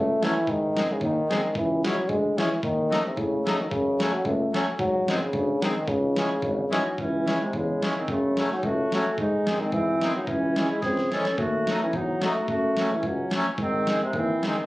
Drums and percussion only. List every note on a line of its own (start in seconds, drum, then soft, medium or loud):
0.23 snare medium
0.47 kick medium
0.77 snare medium
1.01 kick medium
1.31 snare medium
1.55 kick medium
1.85 snare medium
2.09 kick soft
2.38 snare medium
2.63 kick medium
2.92 snare medium
3.17 kick medium
3.47 snare medium
3.71 kick medium
4.00 snare medium
4.25 kick medium
4.54 snare medium
4.79 kick medium
5.08 snare medium
5.33 kick medium
5.62 snare medium
5.88 kick medium
6.16 snare medium
6.42 kick medium
6.73 snare medium
6.98 kick medium
7.28 snare medium
7.53 kick medium
7.82 snare medium
8.08 kick medium
8.37 snare medium
8.50 snare soft
8.63 kick medium
8.92 snare medium
9.18 kick medium
9.47 snare medium
9.72 kick medium
10.01 snare medium
10.27 kick medium
10.56 snare medium
10.82 kick medium
10.82 snare soft
10.97 snare soft
11.12 snare medium
11.25 snare medium
11.38 kick medium
11.67 snare medium
11.93 kick medium
12.22 snare medium
12.48 kick medium
12.77 snare medium
13.03 kick medium
13.31 snare medium
13.58 kick medium
13.87 snare medium
14.13 kick medium
14.43 snare medium